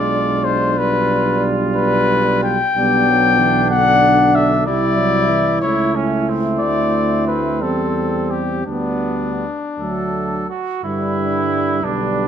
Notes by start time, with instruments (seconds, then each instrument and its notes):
Already playing: tuba B1, trombone G#3, french horn D4, flugelhorn F4, trumpet D5
0.45 trumpet C5
0.78 trombone G3, trumpet B4
1.76 trumpet B4
2.44 trumpet G5
2.76 tuba B1, trombone G3, french horn B3, flugelhorn D4
3.09 trombone F#3
3.38 trombone E3
3.71 trombone D3, french horn D4, trumpet F#5
4.35 trumpet E5
4.66 tuba C2, trombone G3, flugelhorn E4, french horn E4, trumpet D5
4.98 trombone F#3
5.30 trombone E3
5.62 tuba C#2, trombone A3, flugelhorn E4, trumpet C#5
5.96 flugelhorn C#4
6.29 flugelhorn C4
6.60 tuba D2, trumpet D5
7.27 trumpet B4
7.61 tuba E2, trombone G3, french horn C4, trumpet A4
8.31 trumpet G4
8.66 tuba D2, trombone G3, flugelhorn B3, french horn B3, trumpet D4
9.78 tuba D2, french horn F#3, trombone A3, flugelhorn A4
10.49 flugelhorn F#4
10.83 tuba G2, trombone D3, french horn G3, flugelhorn E4, trumpet B4
11.83 tuba B1, trombone D3, french horn G3, flugelhorn D4, trumpet B4